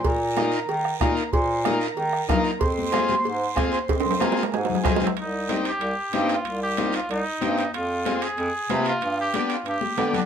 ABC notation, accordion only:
X:1
M:4/4
L:1/8
Q:1/4=187
K:Fdor
V:1 name="Accordion"
B6 B2 | c2 B B4- B | c6 A c- | c2 B2 A3 z |
[K:Cm] z8 | z8 | z8 | z8 |]